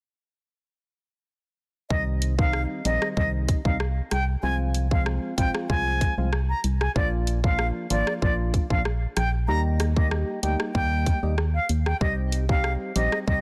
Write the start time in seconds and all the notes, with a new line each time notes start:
1.90 C2 D#3 G3 C4 D#4 D#5, kick
2.22 closed hi-hat
2.38 D#3 G3 C4 D#4 F5, kick
2.53 cross-stick
2.85 A#1 D#3 G3 C4 D#4 D#5, closed hi-hat
3.02 cross-stick
3.16 C2 D#3 G3 C4 D#4 D#5, kick
3.49 kick, closed hi-hat
3.65 C2 D#3 G3 C4 D#4 F5, kick
3.80 cross-stick
4.11 C2 G5, cross-stick, closed hi-hat
4.43 C2 F3 G#3 C4 F4 G#5
4.74 closed hi-hat
4.91 F3 G#3 C4 F4 F5, kick
5.06 cross-stick
5.38 A#1 F3 G#3 C4 F4 G5, kick, closed hi-hat
5.55 cross-stick
5.69 C2 F3 G#3 C4 F4 G#5, kick
6.01 kick, closed hi-hat
6.18 C2 F3 G#3 C4 F4
6.33 cross-stick
6.49 A#5
6.64 C2, closed hi-hat
6.81 G#5, cross-stick
6.96 A#1 F3 A#3 D4 F4 D5, kick
7.27 closed hi-hat
7.44 F3 A#3 D4 F4 F5, kick
7.59 cross-stick
7.90 G#1 F3 A#3 D4 F4 D5, closed hi-hat
8.07 cross-stick
8.22 A#1 F3 A#3 D4 F4 D5, kick
8.54 kick, closed hi-hat
8.70 A#1 F3 A#3 D4 F4 F5, kick
8.85 cross-stick
9.17 A#1 G5, cross-stick, closed hi-hat
9.48 D#2 G3 A#3 D#4 G4 A#5
9.80 cross-stick, closed hi-hat
9.96 G3 A#3 D#4 G4 D#5, kick
10.11 cross-stick
10.43 D2 G3 A#3 D#4 G4 G5, closed hi-hat
10.60 cross-stick
10.74 D#2 G3 A#3 D#4 G4 G5, kick
11.06 kick, closed hi-hat
11.23 D#2 G3 A#3 D#4 G4
11.38 cross-stick
11.55 F5
11.69 D#2, closed hi-hat
11.86 G5, cross-stick
12.01 C2 G3 C4 D#4 G4 D#5, kick
12.32 closed hi-hat
12.49 G3 C4 D#4 G4 F5, kick
12.64 cross-stick
12.95 A#1 G3 C4 D#4 G4 D#5, closed hi-hat
13.12 cross-stick
13.27 C2 G3 C4 D#4 G4 D#5, kick